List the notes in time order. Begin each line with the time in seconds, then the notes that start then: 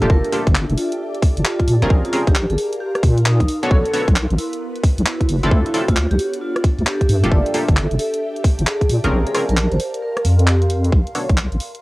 Already playing: D4 G4 A4 E5
0.02 D1 A#3 D4 F4 G4 A4 D5, closed hi-hat
0.10 G1 A#4, kick
0.24 closed hi-hat
0.32 A#3 D4 F4 G4 A4, open hi-hat
0.47 G1, kick, closed hi-hat
0.55 clap
0.69 F1, closed hi-hat
0.77 F4, open hi-hat
0.92 closed hi-hat
1.15 closed hi-hat
1.23 kick, open hi-hat
1.37 G1, closed hi-hat
1.45 F4, clap
1.60 kick, closed hi-hat
1.68 A#2 A#4, open hi-hat
1.82 F1 C4 C#4 F4 G#4 A#4, closed hi-hat
1.90 A#1, kick
2.05 F4, closed hi-hat
2.13 C4 C#4 F4 G#4 A#4 F5, open hi-hat
2.27 A#1 G4, kick, closed hi-hat
2.35 clap
2.50 G#1 G#4, closed hi-hat
2.58 open hi-hat
2.73 closed hi-hat
2.80 G4
2.95 cross-stick, closed hi-hat
3.03 A#2, kick, open hi-hat
3.18 closed hi-hat
3.26 D#4, clap
3.40 A#1, kick, closed hi-hat
3.48 open hi-hat
3.63 B3 D4 F#4 A4 C#5, closed hi-hat
3.71 B1 B3 A4, kick
3.85 closed hi-hat
3.93 B3 D4 F#4 A4 C#5, open hi-hat
4.08 B1, kick, closed hi-hat
4.16 clap
4.22 F#4
4.30 A1, closed hi-hat
4.38 E4, open hi-hat
4.53 closed hi-hat
4.75 closed hi-hat
4.83 kick, open hi-hat
4.98 B1, closed hi-hat
5.06 E4, clap
5.21 kick, closed hi-hat
5.29 F#1, open hi-hat
5.43 F#1 C4 D4 E4 F4 A4, closed hi-hat
5.51 D2 D4, kick
5.66 E4, closed hi-hat
5.74 C4 D4 E4 F4 A4, open hi-hat
5.88 D2 F4, kick, closed hi-hat
5.96 clap
6.11 C2 G4 E5, closed hi-hat
6.19 open hi-hat
6.33 closed hi-hat
6.41 F4
6.56 cross-stick, closed hi-hat
6.64 kick, open hi-hat
6.78 D2, closed hi-hat
6.86 G4, clap
7.01 kick, closed hi-hat
7.09 G2 G4, open hi-hat
7.24 D1 A#3 D4 F4 G4 A4, closed hi-hat
7.31 G1 D5, kick
7.46 closed hi-hat
7.54 A#3 D4 F4 G4 A4, open hi-hat
7.69 G1 D5, kick, closed hi-hat
7.77 clap
7.91 F1, closed hi-hat
7.99 A4, open hi-hat
8.14 closed hi-hat
8.36 closed hi-hat
8.44 kick, open hi-hat
8.59 G1, closed hi-hat
8.67 G#4, clap
8.81 kick, closed hi-hat
8.89 A#2 A#4, open hi-hat
9.04 F1 C4 C#4 F4 G#4 A#4, closed hi-hat
9.12 A#1
9.27 G#4, closed hi-hat
9.35 C4 C#4 F4 G#4 A#4, cross-stick, open hi-hat
9.47 A#1 A#4 F5, closed hi-hat
9.57 clap
9.72 G#1 C5, closed hi-hat
9.80 open hi-hat
9.94 closed hi-hat
10.02 A#4
10.17 cross-stick, closed hi-hat
10.25 F2, open hi-hat
10.39 closed hi-hat
10.47 G4, clap
10.62 closed hi-hat
10.70 open hi-hat
10.84 closed hi-hat
10.92 B1, kick
11.07 closed hi-hat
11.15 B3 D4 F#4 A4 C#5, open hi-hat
11.29 B1, kick, closed hi-hat
11.38 clap
11.52 A1, closed hi-hat
11.60 open hi-hat
11.75 closed hi-hat